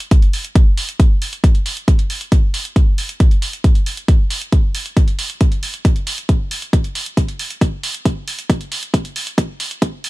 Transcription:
0.00 closed hi-hat
0.11 kick, closed hi-hat
0.22 closed hi-hat
0.33 open hi-hat
0.45 closed hi-hat
0.55 kick, closed hi-hat
0.78 open hi-hat
0.89 closed hi-hat
1.00 kick, closed hi-hat
1.22 open hi-hat
1.33 closed hi-hat
1.44 kick, closed hi-hat
1.55 closed hi-hat
1.66 open hi-hat
1.77 closed hi-hat
1.88 kick, closed hi-hat
1.99 closed hi-hat
2.10 open hi-hat
2.21 closed hi-hat
2.32 kick, closed hi-hat
2.54 open hi-hat
2.65 closed hi-hat
2.76 kick, closed hi-hat
2.98 open hi-hat
3.09 closed hi-hat
3.20 kick, closed hi-hat
3.31 closed hi-hat
3.42 open hi-hat
3.53 closed hi-hat
3.64 kick, closed hi-hat
3.75 closed hi-hat
3.86 open hi-hat
3.97 closed hi-hat
4.08 kick, closed hi-hat
4.30 open hi-hat
4.41 closed hi-hat
4.52 kick, closed hi-hat
4.75 open hi-hat
4.86 closed hi-hat
4.97 kick, closed hi-hat
5.08 closed hi-hat
5.19 open hi-hat
5.30 closed hi-hat
5.41 kick, closed hi-hat
5.52 closed hi-hat
5.63 open hi-hat
5.74 closed hi-hat
5.85 kick, closed hi-hat
5.96 closed hi-hat
6.07 open hi-hat
6.18 closed hi-hat
6.29 kick, closed hi-hat
6.51 open hi-hat
6.62 closed hi-hat
6.73 kick, closed hi-hat
6.84 closed hi-hat
6.95 open hi-hat
7.06 closed hi-hat
7.17 kick, closed hi-hat
7.28 closed hi-hat
7.39 open hi-hat
7.50 closed hi-hat
7.61 kick, closed hi-hat
7.83 open hi-hat
7.94 closed hi-hat
8.05 kick, closed hi-hat
8.28 open hi-hat
8.39 closed hi-hat
8.50 kick, closed hi-hat
8.61 closed hi-hat
8.72 open hi-hat
8.83 closed hi-hat
8.94 kick, closed hi-hat
9.05 closed hi-hat
9.16 open hi-hat
9.27 closed hi-hat
9.38 kick, closed hi-hat
9.60 open hi-hat
9.71 closed hi-hat
9.82 kick, closed hi-hat
10.04 open hi-hat

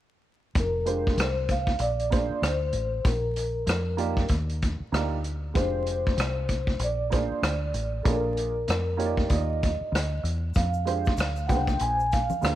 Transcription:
0.55 F1, kick, closed hi-hat
0.60 A#4
0.85 G#3 D4 F4 G4 C5, closed hi-hat
1.07 kick
1.17 C2 C5, cross-stick, closed hi-hat
1.49 F5, kick, closed hi-hat
1.67 kick
1.79 A#1 D5, closed hi-hat
1.99 closed hi-hat
2.10 A#3 D4 F4 G#4 C5, kick, closed hi-hat
2.30 muted fingered electric bass stroke
2.42 D2, cross-stick, closed hi-hat
2.46 C5
2.73 A1, closed hi-hat
3.05 A#1 A#4, kick, closed hi-hat
3.36 closed hi-hat
3.67 F2, cross-stick, closed hi-hat
3.97 A#3 D#4 F4 G4 D5, closed hi-hat
4.17 kick
4.28 D#2, kick, closed hi-hat
4.49 closed hi-hat
4.62 kick, closed hi-hat
4.80 muted fingered electric bass stroke
4.92 D2 A#3 D#4 F4 G4 D5, cross-stick, closed hi-hat
5.24 closed hi-hat
5.54 F1 G#3 D4 F4 G4 C5, kick, closed hi-hat
5.86 closed hi-hat
6.07 kick
6.17 C2, cross-stick, closed hi-hat
6.49 kick, closed hi-hat
6.67 kick
6.79 A#1, closed hi-hat
6.84 D5
7.10 A#3 D4 F4 G#4 C5, kick, closed hi-hat
7.31 muted fingered electric bass stroke
7.42 D2, cross-stick, closed hi-hat
7.74 A1, closed hi-hat
8.03 A#1 A#3 D4 F4 G#4 A4 C#5, kick, closed hi-hat
8.10 A#4 D5
8.37 closed hi-hat
8.68 F2, cross-stick, closed hi-hat
8.97 A#3 D#4 F4 G4 C#5, closed hi-hat
9.06 D5
9.17 kick
9.27 D#2 A#3 D#4 F4 G4 D5, kick, closed hi-hat
9.32 D#5
9.63 kick, closed hi-hat
9.81 muted fingered electric bass stroke
9.92 D2, cross-stick, closed hi-hat
10.23 E2, closed hi-hat
10.54 F2 F5, kick, closed hi-hat, shaker
10.74 shaker
10.85 G#3 D4 F4 G4 C5, closed hi-hat, shaker
11.05 kick, shaker
11.17 D2, cross-stick, closed hi-hat, shaker
11.36 shaker
11.47 C2 A#3 D4 F4 G#4 B4 F#5 G5, kick, closed hi-hat, low conga, shaker
11.56 C5
11.67 kick, shaker
11.79 A#1 G#5, closed hi-hat, shaker
11.99 shaker
12.12 F5, kick, closed hi-hat, shaker
12.30 muted fingered electric bass stroke, high conga, shaker
12.41 D2 A#3 D4 F4 G#4 C5, cross-stick, closed hi-hat, shaker

